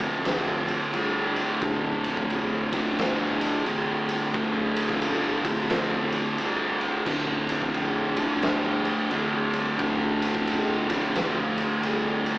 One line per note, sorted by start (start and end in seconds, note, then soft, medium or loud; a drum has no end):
0.00 0.91 D2 medium
0.00 0.92 A2 medium
0.00 0.94 D3 medium
0.00 kick medium
0.00 ride medium
0.25 0.71 F1 loud
0.25 snare loud
0.25 ride loud
0.68 ride medium
0.92 1.39 C2 medium
0.92 1.61 D2 medium
0.92 1.60 A2 medium
0.92 1.63 D3 medium
0.92 ride medium
1.36 ride medium
1.61 1.90 D1 medium
1.61 2.74 D2 loud
1.61 2.70 A2 medium
1.61 2.71 D3 loud
1.61 kick loud
1.61 ride medium
2.04 2.21 F1 medium
2.04 ride medium
2.17 kick medium
2.30 2.75 F1 medium
2.30 ride medium
2.72 3.65 D2 medium
2.72 3.65 A2 loud
2.72 3.68 D3 loud
2.72 kick loud
2.72 ride medium
2.98 3.44 G1 loud
2.98 snare loud
2.98 ride loud
3.41 ride medium
3.65 3.94 A1 medium
3.65 4.32 D2 medium
3.65 4.32 A2 medium
3.65 4.34 D3 medium
3.65 ride medium
4.08 4.25 C2 medium
4.08 ride medium
4.32 4.80 D1 medium
4.32 5.46 D2 medium
4.32 5.42 A2 medium
4.32 5.42 D3 loud
4.32 kick loud
4.32 ride medium
4.76 ride medium
4.89 kick medium
4.89 snare soft
5.02 5.48 G1 medium
5.02 ride loud
5.43 6.37 D2 medium
5.43 6.37 A2 medium
5.43 6.40 D3 loud
5.43 kick medium
5.43 ride medium
5.69 6.15 F1 loud
5.69 snare loud
5.69 ride loud
6.12 ride medium
6.38 6.84 C2 loud
6.38 7.05 D2 medium
6.38 7.06 A2 medium
6.38 7.09 D3 medium
6.38 ride medium
6.81 ride medium
7.06 7.35 D1 medium
7.06 8.18 D2 medium
7.06 8.15 A2 medium
7.06 8.16 D3 loud
7.06 kick loud
7.06 crash medium
7.48 7.66 F1 loud
7.48 ride medium
7.62 kick medium
7.74 8.20 F1 medium
7.74 ride medium
8.16 9.09 D2 medium
8.16 9.09 A2 medium
8.16 9.12 D3 loud
8.16 kick medium
8.16 ride medium
8.42 8.88 G1 loud
8.42 snare loud
8.42 ride loud
8.85 ride medium
9.10 9.39 A1 loud
9.10 9.78 D2 medium
9.10 9.78 A2 medium
9.10 9.81 D3 medium
9.10 ride medium
9.53 9.70 C2 medium
9.53 ride medium
9.79 10.25 D1 medium
9.79 10.91 D2 medium
9.79 10.88 A2 medium
9.79 10.89 D3 loud
9.79 kick medium
9.79 ride medium
10.22 ride medium
10.35 kick medium
10.47 10.93 G1 medium
10.47 ride loud
10.89 11.81 D2 medium
10.89 11.81 A2 loud
10.89 11.84 D3 loud
10.89 kick medium
10.89 ride medium
11.15 11.61 F1 loud
11.15 snare loud
11.15 ride loud
11.58 ride medium
11.81 12.29 C2 loud
11.81 12.38 D2 medium
11.81 12.38 A2 medium
11.81 12.38 D3 medium
11.81 ride medium
12.26 ride medium